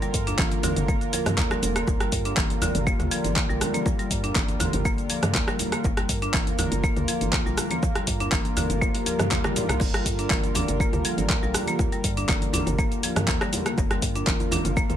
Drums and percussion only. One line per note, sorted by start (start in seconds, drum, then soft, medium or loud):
0.02 closed hi-hat soft
0.02 djembe tone medium
0.02 cabasa soft
0.14 kick medium
0.14 open hi-hat medium
0.14 cabasa loud
0.27 closed hi-hat medium
0.27 djembe tone medium
0.27 cabasa soft
0.39 kick loud
0.39 clap loud
0.39 high conga loud
0.39 cabasa medium
0.52 closed hi-hat soft
0.52 cabasa soft
0.63 open hi-hat medium
0.63 djembe slap medium
0.63 high conga medium
0.63 djembe tone medium
0.63 low conga loud
0.63 djembe bass medium
0.63 cabasa loud
0.76 closed hi-hat medium
0.76 mid tom medium
0.76 cabasa soft
0.88 kick loud
0.88 djembe tone medium
0.88 cabasa medium
1.01 closed hi-hat soft
1.01 cabasa soft
1.13 open hi-hat medium
1.13 djembe tone medium
1.13 cabasa medium
1.26 cross-stick medium
1.26 closed hi-hat medium
1.26 mid tom loud
1.26 high conga loud
1.26 cabasa soft
1.37 kick loud
1.37 clap loud
1.37 djembe bass loud
1.37 cabasa medium
1.51 cross-stick medium
1.51 djembe slap loud
1.51 djembe tone medium
1.51 cabasa soft
1.62 open hi-hat medium
1.62 djembe slap medium
1.62 low conga medium
1.62 cabasa loud
1.76 cross-stick medium
1.76 closed hi-hat medium
1.76 djembe tone medium
1.76 cabasa soft
1.87 kick loud
1.87 djembe slap loud
1.87 djembe tone medium
1.87 cabasa medium
2.00 cross-stick medium
2.00 closed hi-hat soft
2.00 cabasa soft
2.12 kick medium
2.12 open hi-hat medium
2.12 djembe tone medium
2.12 cabasa medium
2.25 closed hi-hat medium
2.25 cabasa soft
2.36 kick loud
2.36 clap loud
2.36 high conga loud
2.36 cabasa medium
2.50 closed hi-hat soft
2.50 djembe tone medium
2.50 cabasa soft
2.61 open hi-hat medium
2.61 djembe slap medium
2.61 high conga medium
2.61 djembe bass loud
2.61 low conga loud
2.61 cabasa medium
2.75 closed hi-hat medium
2.75 mid tom medium
2.75 djembe tone medium
2.75 cabasa soft
2.87 kick loud
2.87 cabasa medium
3.00 closed hi-hat soft
3.00 mid tom medium
3.00 djembe tone loud
3.00 cabasa soft
3.11 open hi-hat medium
3.11 cabasa medium
3.24 closed hi-hat medium
3.24 high conga loud
3.24 cabasa soft
3.36 kick loud
3.36 clap loud
3.36 djembe tone medium
3.36 cabasa medium
3.50 cabasa soft
3.61 cross-stick medium
3.61 open hi-hat medium
3.61 djembe tone medium
3.61 low conga medium
3.61 cabasa medium
3.74 closed hi-hat medium
3.74 high conga medium
3.74 cabasa soft
3.86 kick loud
3.86 djembe slap loud
3.86 djembe tone medium
3.86 cabasa medium
3.99 closed hi-hat soft
3.99 cabasa soft
4.11 kick medium
4.11 open hi-hat medium
4.11 cabasa medium
4.24 closed hi-hat medium
4.24 djembe tone medium
4.24 cabasa soft
4.35 kick loud
4.35 clap loud
4.35 high conga loud
4.35 cabasa medium
4.48 closed hi-hat soft
4.48 djembe tone medium
4.48 cabasa soft
4.60 open hi-hat medium
4.60 djembe slap medium
4.60 high conga medium
4.60 low conga loud
4.60 djembe bass loud
4.60 cabasa medium
4.73 closed hi-hat medium
4.73 mid tom medium
4.73 djembe tone medium
4.73 cabasa soft
4.85 kick loud
4.85 cabasa medium
4.98 closed hi-hat soft
4.98 cabasa soft
5.10 open hi-hat medium
5.10 djembe tone medium
5.10 cabasa medium
5.22 cross-stick medium
5.22 closed hi-hat medium
5.22 mid tom medium
5.22 high conga loud
5.22 cabasa soft
5.34 kick loud
5.34 clap loud
5.34 djembe tone medium
5.34 djembe bass loud
5.34 cabasa soft
5.48 cross-stick medium
5.48 djembe slap loud
5.48 cabasa soft
5.59 open hi-hat medium
5.59 djembe tone medium
5.59 low conga medium
5.59 cabasa medium
5.72 cross-stick medium
5.72 closed hi-hat medium
5.72 cabasa soft
5.84 kick loud
5.84 djembe slap loud
5.84 cabasa medium
5.97 cross-stick medium
5.97 closed hi-hat soft
5.97 djembe tone medium
5.97 cabasa soft
6.09 kick medium
6.09 open hi-hat medium
6.09 cabasa medium
6.22 closed hi-hat medium
6.22 djembe tone medium
6.22 cabasa soft
6.34 kick loud
6.34 clap loud
6.34 high conga loud
6.34 cabasa medium
6.47 closed hi-hat soft
6.47 djembe tone medium
6.47 cabasa soft
6.58 open hi-hat loud
6.58 djembe slap medium
6.58 high conga medium
6.58 djembe bass medium
6.58 low conga loud
6.58 cabasa medium
6.72 closed hi-hat medium
6.72 mid tom medium
6.72 cabasa soft
6.84 kick loud
6.84 djembe tone medium
6.84 cabasa medium
6.96 closed hi-hat soft
6.96 mid tom medium
6.96 cabasa soft
7.08 open hi-hat medium
7.08 djembe tone medium
7.08 cabasa medium
7.21 closed hi-hat medium
7.21 high conga medium
7.21 cabasa soft
7.33 kick loud
7.33 clap loud
7.33 djembe tone medium
7.33 cabasa soft
7.46 cabasa soft
7.58 cross-stick medium
7.58 open hi-hat loud
7.58 low conga medium
7.58 cabasa medium
7.70 closed hi-hat medium
7.70 high conga medium
7.70 djembe tone medium
7.70 cabasa soft
7.83 kick loud
7.83 djembe slap loud
7.83 cabasa medium
7.95 cross-stick medium
7.95 closed hi-hat soft
7.95 djembe tone medium
7.95 cabasa soft
8.07 kick medium
8.07 open hi-hat loud
8.07 cabasa medium
8.20 closed hi-hat medium
8.20 djembe tone medium
8.20 cabasa soft
8.32 kick loud
8.32 clap loud
8.32 high conga loud
8.32 cabasa medium
8.45 closed hi-hat soft
8.45 cabasa soft
8.57 open hi-hat medium
8.57 djembe slap medium
8.57 djembe tone medium
8.57 high conga medium
8.57 low conga loud
8.57 djembe bass loud
8.57 cabasa medium
8.70 closed hi-hat medium
8.70 mid tom medium
8.70 cabasa soft
8.82 kick loud
8.82 high tom medium
8.82 djembe tone medium
8.82 cabasa medium
8.95 open hi-hat medium
8.95 high tom medium
8.95 cabasa soft
9.06 open hi-hat medium
9.06 djembe tone loud
9.06 cabasa medium
9.19 cross-stick medium
9.19 closed hi-hat medium
9.19 mid tom medium
9.19 high conga loud
9.19 cabasa soft
9.31 kick loud
9.31 clap loud
9.31 mid tom medium
9.31 djembe bass loud
9.31 cabasa soft
9.44 cross-stick medium
9.44 mid tom medium
9.44 djembe slap loud
9.44 djembe tone medium
9.44 cabasa soft
9.56 mid tom loud
9.56 open hi-hat medium
9.56 djembe slap medium
9.56 high conga medium
9.56 low conga medium
9.56 cabasa medium
9.69 cross-stick medium
9.69 closed hi-hat medium
9.69 mid tom medium
9.69 djembe tone medium
9.69 cabasa soft
9.80 kick loud
9.80 crash medium
9.80 djembe slap loud
9.80 djembe tone medium
9.80 cabasa medium
9.94 cross-stick medium
9.94 closed hi-hat soft
9.94 cabasa soft
10.06 kick medium
10.06 open hi-hat medium
10.06 djembe tone medium
10.06 cabasa medium
10.19 closed hi-hat medium
10.19 cabasa soft
10.30 kick loud
10.30 clap loud
10.30 high conga loud
10.30 cabasa medium
10.44 closed hi-hat soft
10.44 djembe tone medium
10.44 cabasa soft
10.55 open hi-hat loud
10.55 djembe slap medium
10.55 high conga medium
10.55 low conga loud
10.55 djembe bass loud
10.55 cabasa medium
10.68 closed hi-hat medium
10.68 mid tom medium
10.68 djembe tone medium
10.68 cabasa soft
10.80 kick loud
10.80 cabasa medium
10.93 closed hi-hat soft
10.93 mid tom medium
10.93 djembe tone medium
10.93 cabasa soft
11.05 open hi-hat medium
11.05 cabasa medium
11.17 closed hi-hat medium
11.17 high conga loud
11.17 cabasa soft
11.30 kick loud
11.30 clap loud
11.30 djembe tone medium
11.30 cabasa medium
11.43 cabasa soft
11.54 cross-stick loud
11.54 open hi-hat loud
11.54 djembe tone medium
11.54 low conga medium
11.54 cabasa loud
11.67 closed hi-hat medium
11.67 high conga medium
11.67 cabasa soft
11.79 kick loud
11.79 djembe slap loud
11.79 djembe tone medium
11.79 cabasa medium
11.92 closed hi-hat soft
11.92 cabasa soft
12.04 kick medium
12.04 open hi-hat medium
12.04 cabasa loud
12.17 closed hi-hat medium
12.17 djembe tone medium
12.17 cabasa soft
12.29 kick loud
12.29 clap medium
12.29 high conga loud
12.29 cabasa medium
12.42 closed hi-hat soft
12.42 djembe tone medium
12.42 cabasa soft
12.53 open hi-hat medium
12.53 djembe slap medium
12.53 high conga medium
12.53 low conga loud
12.53 djembe bass loud
12.53 cabasa loud
12.67 closed hi-hat medium
12.67 mid tom medium
12.67 djembe tone loud
12.67 cabasa soft
12.79 kick loud
12.79 cabasa medium
12.92 closed hi-hat soft
12.92 cabasa soft
13.03 open hi-hat medium
13.03 djembe tone medium
13.03 cabasa medium
13.16 cross-stick loud
13.16 closed hi-hat medium
13.16 mid tom medium
13.16 high conga loud
13.16 cabasa soft
13.28 kick loud
13.28 clap medium
13.28 djembe tone medium
13.28 djembe bass loud
13.28 cabasa medium
13.41 cross-stick loud
13.41 djembe slap loud
13.41 cabasa soft
13.53 open hi-hat medium
13.53 djembe tone loud
13.53 low conga loud
13.53 cabasa loud
13.66 cross-stick medium
13.66 closed hi-hat medium
13.66 cabasa soft
13.78 kick loud
13.78 djembe slap loud
13.78 cabasa medium
13.91 cross-stick medium
13.91 closed hi-hat soft
13.91 djembe tone medium
13.91 cabasa soft
14.02 kick medium
14.02 open hi-hat medium
14.02 cabasa loud
14.15 closed hi-hat medium
14.15 djembe tone medium
14.15 cabasa soft
14.27 kick loud
14.27 clap loud
14.27 high conga loud
14.27 cabasa medium
14.40 closed hi-hat soft
14.40 djembe tone loud
14.40 cabasa soft
14.51 open hi-hat medium
14.51 djembe slap medium
14.51 high conga loud
14.51 low conga loud
14.51 djembe bass medium
14.51 cabasa loud
14.65 closed hi-hat medium
14.65 mid tom medium
14.65 cabasa soft
14.76 kick loud
14.76 djembe tone medium
14.76 cabasa medium
14.90 closed hi-hat soft
14.90 mid tom medium
14.90 cabasa soft